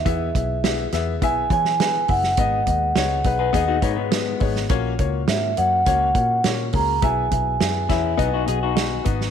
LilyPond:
<<
  \new Staff \with { instrumentName = "Vibraphone" } { \time 4/4 \key e \major \tempo 4 = 103 e''4. r8 gis''8 gis''4 fis''8~ | fis''2~ fis''8 r4. | r4 e''8 fis''4. r8 ais''8 | gis''2.~ gis''8 r8 | }
  \new Staff \with { instrumentName = "Grand piano" } { \time 4/4 \key e \major <b e' gis' e''>8 <b e' gis' e''>8 <b e' gis' e''>8 <b e' gis' e''>8 <b e' gis' e''>8 <b e' gis' cis''>8 <b e' gis' b'>8 <b e' gis' e''>8 | <b dis' gis' dis''>8 <b dis' gis' dis''>8 <b dis' gis' cis''>8 <b dis' gis' b'>8 <b dis' gis' dis''>8 <b dis' gis' cis''>8 <b dis' gis'>8 <b dis' gis' cis''>8 | <ais cis' fis' cis''>8 <ais cis' fis' cis''>8 <ais cis' fis' cis''>8 <ais cis' fis' cis''>8 <ais cis' fis' cis''>8 <ais cis' fis' cis''>8 <ais cis' fis' cis''>8 <ais cis' fis' gis'>8 | <b e' gis' e''>8 <b e' gis' e''>8 <b e' gis' e''>8 <b e' gis' e''>8 <b dis' fis' dis''>8 <b dis' fis' dis''>8 <b dis' fis' fis''>8 <b dis' fis' dis''>8 | }
  \new Staff \with { instrumentName = "Grand piano" } { \clef bass \time 4/4 \key e \major e4. r2 r8 | gis,4. r4 b''8 dis''4 | ais,4. r2 r8 | b,4. r8 b,4. r8 | }
  \new Staff \with { instrumentName = "Clean electric guitar" } { \time 4/4 \key e \major r1 | r4. r16 <gis' b'>16 gis'16 <dis' fis'>16 <b dis'>16 <gis b>4~ <gis b>16 | r1 | r4. <cis' e'>8 <b dis'>16 <dis' fis'>16 gis'16 <dis' fis'>4~ <dis' fis'>16 | }
  \new Staff \with { instrumentName = "Picked electric bass" } { \clef bass \time 4/4 \key e \major e,8 b,,4 e,8 b,,8 e4 fis,,8 | gis,,8 dis,8 cis,8 b,,8 dis,8 gis,4 gis,,8 | ais,,8 cis,8 gis,8 fis,8 cis,8 ais,8 ais,8 cis,8 | b,,8 b,,8 fis,8 e,8 b,,8 b,,4 gis,,8 | }
  \new DrumStaff \with { instrumentName = "Drums" } \drummode { \time 4/4 <hh bd>8 <hh bd>8 <hh sn>8 <hh sn>8 <hh bd>8 <hh bd>16 sn16 <hh sn>8 <hho bd>16 sn16 | <hh bd>8 <hh bd>8 <hh sn>8 <hh bd>8 <hh bd>8 <hh bd>8 <hh sn>8 <hho bd>16 sn16 | <hh bd>8 <hh bd>8 <hh sn>8 hh8 <hh bd>8 <hh bd>8 <hh sn>8 <hho bd>8 | <hh bd>8 <hh bd>8 <hh sn>8 <hh bd sn>8 <hh bd>8 hh8 <hh sn>8 <hh bd>16 sn16 | }
>>